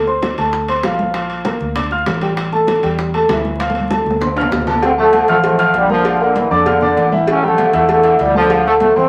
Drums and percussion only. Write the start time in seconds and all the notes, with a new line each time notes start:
0.07 high bongo, high conga
0.22 high bongo, high conga, high timbale, low timbale
0.38 high bongo, high timbale
0.53 high bongo, high conga
0.69 high conga, high timbale
0.83 high bongo, low bongo, high conga, high timbale, low timbale
0.99 high bongo, high conga
1.14 high bongo, high conga, high timbale
1.30 high conga, high timbale
1.45 high bongo, high conga, high timbale, low timbale
1.61 high bongo, high conga
1.76 high bongo, high conga, low conga, high timbale
1.91 high bongo, high conga
2.06 high bongo, low bongo, high conga, high timbale, low timbale
2.21 high bongo, high conga, high timbale
2.37 high bongo, high conga, high timbale
2.52 high bongo, high conga
2.67 high bongo, high conga, high timbale, low timbale
2.83 high bongo, high timbale
2.98 high bongo, high conga
3.14 high conga, high timbale
3.29 high bongo, low bongo, high conga, high timbale, low timbale
3.44 high bongo, high conga
3.60 high bongo, high conga, high timbale
3.70 high conga
3.75 high timbale
3.80 high conga
3.90 high bongo, high conga, high timbale, low timbale
4.06 high bongo
4.11 high conga
4.21 high bongo, low conga, high timbale
4.37 high bongo, high timbale
4.41 low conga
4.52 high bongo, low bongo, low conga, low timbale
4.62 low conga
4.67 high bongo, low timbale
4.72 low conga
4.82 cowbell, high conga, low agogo
4.98 high conga
5.13 cowbell, high conga, low agogo
5.28 cowbell, high conga, low agogo
5.43 cowbell, high conga, low agogo
5.59 cowbell, high conga, low agogo
5.74 cowbell, high conga
5.90 high conga
6.05 cowbell, high conga, low agogo
6.20 high conga, low agogo
6.36 cowbell, high conga
6.51 low agogo
6.66 cowbell, high conga, low conga, low agogo
6.82 high conga, low conga
6.97 cowbell, high conga, low agogo
7.12 high conga
7.27 cowbell, high conga, low agogo
7.43 high conga
7.58 cowbell, high conga, low agogo
7.73 cowbell, high conga, low agogo
7.89 cowbell, high conga, low agogo
8.03 cowbell, high conga, low agogo
8.19 cowbell, high conga, low timbale
8.35 high conga
8.50 cowbell, high conga, low agogo
8.65 high conga, low agogo
8.80 cowbell, high conga
8.96 low agogo